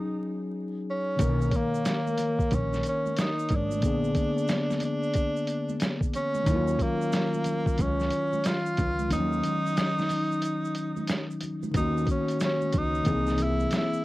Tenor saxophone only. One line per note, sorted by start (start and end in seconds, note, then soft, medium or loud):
0.00 0.49 D#4 loud
0.90 1.57 C#4 medium
1.56 2.56 A#3 medium
2.54 2.86 C#4 medium
2.88 3.21 C#4 medium
3.20 3.56 D#4 medium
3.55 4.84 D4 medium
4.85 5.86 D4 loud
6.16 6.84 C#4 loud
6.82 7.83 A#3 medium
7.81 8.48 C#4 loud
8.47 9.11 F4 loud
9.13 11.38 D#4 loud
11.77 12.06 D#4 loud
12.11 12.40 C#4 medium
12.45 12.79 C#4 medium
12.77 13.44 D#4 loud
13.43 13.74 E4 medium
13.77 14.05 E4 medium